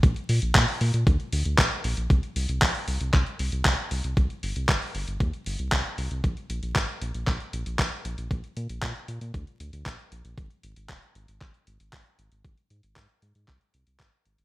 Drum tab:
HH |xxoxxooxxxoxxxox|xxox-ooxxxoxxxox|xxox-ooxxxox-xox|xxxxxxxxxxxxxxxx|
CP |----x-------x---|----x---x---x---|----x-------x---|----x---x---x---|
BD |o---o---o---o---|o---o---o---o---|o---o---o---o---|o---o---o---o---|

HH |xxxx-xxxxxxxxxxx|xxxx-xxxxxxxxxxx|xxxxxxxxxxxxxxxx|
CP |----x-------x---|----x---x---x---|----x---x---x---|
BD |o---o---o---o---|o---o---o---o---|o---o---o---o---|